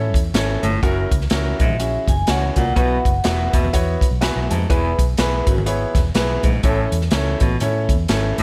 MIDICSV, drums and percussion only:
0, 0, Header, 1, 2, 480
1, 0, Start_track
1, 0, Key_signature, 4, "major"
1, 0, Tempo, 484653
1, 820, Time_signature, 4, 2, 24, 8
1, 8348, End_track
2, 0, Start_track
2, 0, Title_t, "Drums"
2, 141, Note_on_c, 9, 36, 90
2, 149, Note_on_c, 9, 62, 28
2, 152, Note_on_c, 9, 42, 64
2, 240, Note_off_c, 9, 36, 0
2, 248, Note_off_c, 9, 62, 0
2, 251, Note_off_c, 9, 42, 0
2, 339, Note_on_c, 9, 42, 79
2, 343, Note_on_c, 9, 63, 66
2, 348, Note_on_c, 9, 38, 110
2, 438, Note_off_c, 9, 42, 0
2, 442, Note_off_c, 9, 63, 0
2, 447, Note_off_c, 9, 38, 0
2, 624, Note_on_c, 9, 63, 73
2, 625, Note_on_c, 9, 42, 70
2, 723, Note_off_c, 9, 63, 0
2, 724, Note_off_c, 9, 42, 0
2, 819, Note_on_c, 9, 36, 97
2, 823, Note_on_c, 9, 42, 72
2, 827, Note_on_c, 9, 62, 46
2, 918, Note_off_c, 9, 36, 0
2, 922, Note_off_c, 9, 42, 0
2, 926, Note_off_c, 9, 62, 0
2, 1103, Note_on_c, 9, 36, 85
2, 1105, Note_on_c, 9, 42, 65
2, 1108, Note_on_c, 9, 62, 39
2, 1198, Note_on_c, 9, 38, 32
2, 1202, Note_off_c, 9, 36, 0
2, 1204, Note_off_c, 9, 42, 0
2, 1207, Note_off_c, 9, 62, 0
2, 1286, Note_on_c, 9, 42, 85
2, 1296, Note_off_c, 9, 38, 0
2, 1296, Note_on_c, 9, 38, 109
2, 1303, Note_on_c, 9, 63, 62
2, 1385, Note_off_c, 9, 42, 0
2, 1395, Note_off_c, 9, 38, 0
2, 1402, Note_off_c, 9, 63, 0
2, 1580, Note_on_c, 9, 42, 65
2, 1583, Note_on_c, 9, 36, 87
2, 1677, Note_on_c, 9, 64, 66
2, 1679, Note_off_c, 9, 42, 0
2, 1682, Note_off_c, 9, 36, 0
2, 1776, Note_off_c, 9, 64, 0
2, 1779, Note_on_c, 9, 42, 87
2, 1878, Note_off_c, 9, 42, 0
2, 2056, Note_on_c, 9, 36, 86
2, 2061, Note_on_c, 9, 42, 65
2, 2067, Note_on_c, 9, 62, 29
2, 2067, Note_on_c, 9, 64, 64
2, 2155, Note_off_c, 9, 36, 0
2, 2160, Note_off_c, 9, 42, 0
2, 2166, Note_off_c, 9, 62, 0
2, 2166, Note_off_c, 9, 64, 0
2, 2247, Note_on_c, 9, 42, 79
2, 2256, Note_on_c, 9, 38, 108
2, 2257, Note_on_c, 9, 63, 63
2, 2346, Note_off_c, 9, 42, 0
2, 2355, Note_off_c, 9, 38, 0
2, 2356, Note_off_c, 9, 63, 0
2, 2534, Note_on_c, 9, 42, 64
2, 2540, Note_on_c, 9, 36, 82
2, 2543, Note_on_c, 9, 63, 68
2, 2633, Note_off_c, 9, 42, 0
2, 2639, Note_off_c, 9, 36, 0
2, 2642, Note_off_c, 9, 63, 0
2, 2737, Note_on_c, 9, 36, 99
2, 2738, Note_on_c, 9, 42, 77
2, 2750, Note_on_c, 9, 62, 45
2, 2836, Note_off_c, 9, 36, 0
2, 2837, Note_off_c, 9, 42, 0
2, 2849, Note_off_c, 9, 62, 0
2, 3023, Note_on_c, 9, 36, 85
2, 3026, Note_on_c, 9, 62, 39
2, 3028, Note_on_c, 9, 42, 61
2, 3122, Note_off_c, 9, 36, 0
2, 3125, Note_off_c, 9, 62, 0
2, 3127, Note_off_c, 9, 42, 0
2, 3207, Note_on_c, 9, 42, 81
2, 3218, Note_on_c, 9, 38, 111
2, 3228, Note_on_c, 9, 63, 65
2, 3306, Note_off_c, 9, 42, 0
2, 3317, Note_off_c, 9, 38, 0
2, 3327, Note_off_c, 9, 63, 0
2, 3500, Note_on_c, 9, 42, 68
2, 3501, Note_on_c, 9, 36, 89
2, 3599, Note_off_c, 9, 42, 0
2, 3600, Note_off_c, 9, 36, 0
2, 3610, Note_on_c, 9, 64, 66
2, 3699, Note_on_c, 9, 42, 87
2, 3700, Note_on_c, 9, 36, 71
2, 3707, Note_off_c, 9, 64, 0
2, 3707, Note_on_c, 9, 64, 62
2, 3798, Note_off_c, 9, 42, 0
2, 3799, Note_off_c, 9, 36, 0
2, 3806, Note_off_c, 9, 64, 0
2, 3974, Note_on_c, 9, 36, 90
2, 3983, Note_on_c, 9, 42, 65
2, 3993, Note_on_c, 9, 62, 26
2, 4074, Note_off_c, 9, 36, 0
2, 4082, Note_off_c, 9, 42, 0
2, 4093, Note_off_c, 9, 62, 0
2, 4174, Note_on_c, 9, 42, 78
2, 4183, Note_on_c, 9, 38, 111
2, 4183, Note_on_c, 9, 63, 67
2, 4273, Note_off_c, 9, 42, 0
2, 4282, Note_off_c, 9, 38, 0
2, 4282, Note_off_c, 9, 63, 0
2, 4462, Note_on_c, 9, 42, 66
2, 4466, Note_on_c, 9, 63, 70
2, 4561, Note_off_c, 9, 42, 0
2, 4565, Note_off_c, 9, 63, 0
2, 4655, Note_on_c, 9, 36, 101
2, 4657, Note_on_c, 9, 42, 77
2, 4674, Note_on_c, 9, 62, 46
2, 4754, Note_off_c, 9, 36, 0
2, 4756, Note_off_c, 9, 42, 0
2, 4773, Note_off_c, 9, 62, 0
2, 4939, Note_on_c, 9, 36, 90
2, 4942, Note_on_c, 9, 42, 69
2, 4954, Note_on_c, 9, 62, 41
2, 5038, Note_off_c, 9, 36, 0
2, 5041, Note_off_c, 9, 42, 0
2, 5053, Note_off_c, 9, 62, 0
2, 5125, Note_on_c, 9, 42, 80
2, 5135, Note_on_c, 9, 38, 107
2, 5158, Note_on_c, 9, 63, 61
2, 5224, Note_off_c, 9, 42, 0
2, 5234, Note_off_c, 9, 38, 0
2, 5258, Note_off_c, 9, 63, 0
2, 5415, Note_on_c, 9, 42, 69
2, 5416, Note_on_c, 9, 36, 94
2, 5514, Note_off_c, 9, 42, 0
2, 5515, Note_off_c, 9, 36, 0
2, 5528, Note_on_c, 9, 64, 65
2, 5609, Note_on_c, 9, 42, 86
2, 5627, Note_off_c, 9, 64, 0
2, 5708, Note_off_c, 9, 42, 0
2, 5891, Note_on_c, 9, 36, 88
2, 5895, Note_on_c, 9, 42, 64
2, 5897, Note_on_c, 9, 38, 33
2, 5903, Note_on_c, 9, 62, 28
2, 5903, Note_on_c, 9, 64, 61
2, 5990, Note_off_c, 9, 36, 0
2, 5994, Note_off_c, 9, 42, 0
2, 5996, Note_off_c, 9, 38, 0
2, 6002, Note_off_c, 9, 62, 0
2, 6002, Note_off_c, 9, 64, 0
2, 6087, Note_on_c, 9, 42, 76
2, 6093, Note_on_c, 9, 63, 66
2, 6096, Note_on_c, 9, 38, 109
2, 6186, Note_off_c, 9, 42, 0
2, 6192, Note_off_c, 9, 63, 0
2, 6195, Note_off_c, 9, 38, 0
2, 6368, Note_on_c, 9, 63, 73
2, 6372, Note_on_c, 9, 42, 71
2, 6377, Note_on_c, 9, 36, 84
2, 6467, Note_off_c, 9, 63, 0
2, 6471, Note_off_c, 9, 42, 0
2, 6476, Note_off_c, 9, 36, 0
2, 6569, Note_on_c, 9, 42, 73
2, 6573, Note_on_c, 9, 36, 98
2, 6576, Note_on_c, 9, 62, 46
2, 6668, Note_off_c, 9, 42, 0
2, 6672, Note_off_c, 9, 36, 0
2, 6675, Note_off_c, 9, 62, 0
2, 6854, Note_on_c, 9, 62, 40
2, 6855, Note_on_c, 9, 42, 66
2, 6943, Note_on_c, 9, 38, 32
2, 6953, Note_off_c, 9, 62, 0
2, 6954, Note_off_c, 9, 42, 0
2, 7038, Note_on_c, 9, 42, 82
2, 7043, Note_off_c, 9, 38, 0
2, 7048, Note_on_c, 9, 38, 110
2, 7060, Note_on_c, 9, 63, 65
2, 7137, Note_off_c, 9, 42, 0
2, 7147, Note_off_c, 9, 38, 0
2, 7159, Note_off_c, 9, 63, 0
2, 7329, Note_on_c, 9, 42, 67
2, 7338, Note_on_c, 9, 36, 90
2, 7428, Note_off_c, 9, 42, 0
2, 7437, Note_off_c, 9, 36, 0
2, 7530, Note_on_c, 9, 42, 84
2, 7536, Note_on_c, 9, 64, 65
2, 7629, Note_off_c, 9, 42, 0
2, 7635, Note_off_c, 9, 64, 0
2, 7814, Note_on_c, 9, 36, 87
2, 7817, Note_on_c, 9, 42, 65
2, 7913, Note_off_c, 9, 36, 0
2, 7916, Note_off_c, 9, 42, 0
2, 8007, Note_on_c, 9, 42, 78
2, 8016, Note_on_c, 9, 38, 109
2, 8017, Note_on_c, 9, 63, 62
2, 8106, Note_off_c, 9, 42, 0
2, 8115, Note_off_c, 9, 38, 0
2, 8116, Note_off_c, 9, 63, 0
2, 8301, Note_on_c, 9, 42, 63
2, 8307, Note_on_c, 9, 63, 71
2, 8348, Note_off_c, 9, 42, 0
2, 8348, Note_off_c, 9, 63, 0
2, 8348, End_track
0, 0, End_of_file